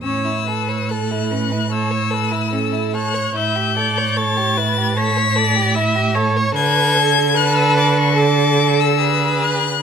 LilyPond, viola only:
\new Staff \with { instrumentName = "Viola" } { \time 4/4 \key a \major \tempo 4 = 74 cis''8 b'8 a'8 b'8 cis''8 b'8 a'8 cis''8 | e''8 d''8 cis''8 b'8 cis''8 d''8 e''8 cis''8 | b'8 a'8 b'4 a'4 b'4 | }